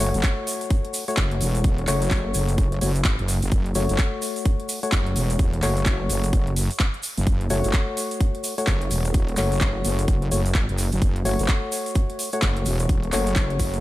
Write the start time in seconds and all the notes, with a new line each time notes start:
0.00 F#1 A3 F#4 C#5, open hi-hat, shaker
0.14 F#1, closed hi-hat, shaker
0.23 kick, clap, closed hi-hat, shaker
0.47 open hi-hat, shaker
0.61 closed hi-hat, shaker
0.70 kick, closed hi-hat, shaker
0.85 closed hi-hat
0.94 open hi-hat, shaker
1.08 A3 F#4 C#5, closed hi-hat, shaker
1.17 F#1, kick, clap, closed hi-hat, shaker
1.31 closed hi-hat
1.41 E1, open hi-hat, shaker
1.55 closed hi-hat, shaker
1.64 kick, closed hi-hat, shaker
1.78 closed hi-hat
1.87 F#1 A3 F#4 C#5, clap, open hi-hat, shaker
2.02 closed hi-hat, shaker
2.11 kick, clap, closed hi-hat
2.34 F#1, open hi-hat, shaker
2.48 closed hi-hat, shaker
2.58 F#1, kick, closed hi-hat, shaker
2.72 closed hi-hat
2.81 F#1 A3 F#4 C#5, open hi-hat, shaker
2.95 closed hi-hat, shaker
3.05 G#1, kick, clap, closed hi-hat, shaker
3.19 F#1, closed hi-hat
3.28 open hi-hat, shaker
3.42 F#1, closed hi-hat, shaker
3.52 F#1, kick, closed hi-hat, shaker
3.66 closed hi-hat
3.75 F#1 A3 F#4 C#5, open hi-hat, shaker
3.89 F#1, closed hi-hat, shaker
3.98 kick, clap, closed hi-hat, shaker
4.22 open hi-hat, shaker
4.36 closed hi-hat, shaker
4.45 kick, closed hi-hat, shaker
4.60 closed hi-hat
4.69 open hi-hat, shaker
4.83 A3 F#4 C#5, closed hi-hat, shaker
4.92 F#1, kick, clap, closed hi-hat, shaker
5.07 closed hi-hat
5.16 E1, open hi-hat, shaker
5.30 closed hi-hat, shaker
5.39 kick, closed hi-hat, shaker
5.53 closed hi-hat
5.62 F#1 A3 F#4 C#5, clap, open hi-hat, shaker
5.77 closed hi-hat, shaker
5.86 kick, clap, closed hi-hat, shaker
6.09 F#1, open hi-hat, shaker
6.24 closed hi-hat, shaker
6.33 F#1, kick, closed hi-hat, shaker
6.47 closed hi-hat
6.56 open hi-hat, shaker
6.71 closed hi-hat, shaker
6.80 kick, clap, closed hi-hat
6.94 closed hi-hat
7.03 open hi-hat, shaker
7.17 F#1, closed hi-hat, shaker
7.27 F#1, kick, closed hi-hat, shaker
7.41 closed hi-hat
7.50 F#1 A3 F#4 C#5, open hi-hat, shaker
7.64 F#1, closed hi-hat, shaker
7.73 kick, clap, closed hi-hat, shaker
7.97 open hi-hat, shaker
8.11 closed hi-hat, shaker
8.20 kick, closed hi-hat
8.35 closed hi-hat
8.44 open hi-hat, shaker
8.58 A3 F#4 C#5, closed hi-hat, shaker
8.67 F#1, kick, clap, closed hi-hat, shaker
8.81 closed hi-hat
8.91 E1, open hi-hat, shaker
9.05 closed hi-hat, shaker
9.14 kick, closed hi-hat, shaker
9.28 closed hi-hat
9.36 F#1 A3 F#4 C#5, clap, open hi-hat, shaker
9.52 closed hi-hat, shaker
9.61 kick, clap, closed hi-hat
9.85 F#1, open hi-hat, shaker
9.99 closed hi-hat, shaker
10.08 F#1, kick, closed hi-hat, shaker
10.22 closed hi-hat
10.31 F#1 A3 F#4 C#5, open hi-hat, shaker
10.46 closed hi-hat, shaker
10.55 G#1, kick, clap, closed hi-hat, shaker
10.69 F#1, closed hi-hat
10.78 open hi-hat, shaker
10.92 F#1, closed hi-hat, shaker
11.02 F#1, kick, closed hi-hat, shaker
11.16 closed hi-hat
11.25 F#1 A3 F#4 C#5, open hi-hat, shaker
11.39 F#1, closed hi-hat, shaker
11.48 kick, clap, closed hi-hat
11.72 open hi-hat, shaker
11.86 closed hi-hat, shaker
11.95 kick, closed hi-hat, shaker
12.10 closed hi-hat
12.19 open hi-hat, shaker
12.32 A3 F#4 C#5, closed hi-hat, shaker
12.42 F#1, kick, clap, closed hi-hat, shaker
12.57 closed hi-hat
12.66 E1, open hi-hat, shaker
12.79 closed hi-hat, shaker
12.89 kick, closed hi-hat, shaker
13.03 closed hi-hat
13.12 F#1 A3 F#4 C#5, clap, open hi-hat, shaker
13.27 closed hi-hat, shaker
13.36 kick, clap, closed hi-hat, shaker
13.50 closed hi-hat
13.59 F#1, kick, open hi-hat, shaker
13.74 closed hi-hat, shaker